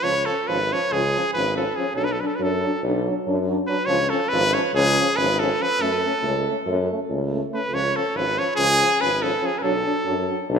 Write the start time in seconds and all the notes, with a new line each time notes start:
0.02 C#2 F3 C#4 C#5
0.26 F3 A4
0.30 C#4
0.47 G#1 F3 C#4 B4
0.72 F3 C#4 C#5
0.91 C#2 F3 C#4 G#4
1.15 F3 C#4
1.33 G#1 F3 C#4 B4
1.56 F3 C#4 A4
1.76 F3 C#4 G#4
1.95 B1 F#3 D4 A4
2.05 B4
2.12 A4
2.19 F#3 D4 B4
2.27 A4
2.35 F#3 B4
2.39 F#2 D4 A4
2.63 F#3 D4
2.82 B1 F#3 D4
3.06 F#3 D4
3.25 F#2 F#3 D4
3.48 F#3 D4
3.67 F#3 D4 B4
3.86 C#2 F3 C#4 C#5
4.10 F3 C#4 A4
4.29 G#1 F3 C#4 B4
4.54 F3 C#4 C#5
4.74 C#2 F3 C#4 G#4
4.99 F3 C#4
5.16 G#1 C#4 B4
5.21 F3
5.39 F3 C#4 A4
5.60 F3 C#4 B4
5.79 F#2 A3 C#4 A4
6.04 A3 C#4
6.22 C#2 A3 C#4
6.47 A3 C#4
6.66 F#2 A3 C#4
6.91 A3 C#4
7.10 C#2 A3 C#4
7.33 A3 C#4
7.52 A3 C#4 B4
7.70 C#2 F3 C#4 C#5
7.95 F3 C#4 A4
8.14 G#1 F3 C#4 B4
8.39 F3 C#4 C#5
8.56 C#2 F3 C#4 G#4
8.82 F3 C#4
9.00 G#1 F3 C#4 B4
9.22 F3 C#4 A4
9.41 F3 C#4
9.46 G#4
9.59 B1 A4 B4
9.63 F#3 D4
9.85 F#3 D4
10.06 F#2 F#3 D4
10.28 F#3 D4
10.49 B1 F#3 D4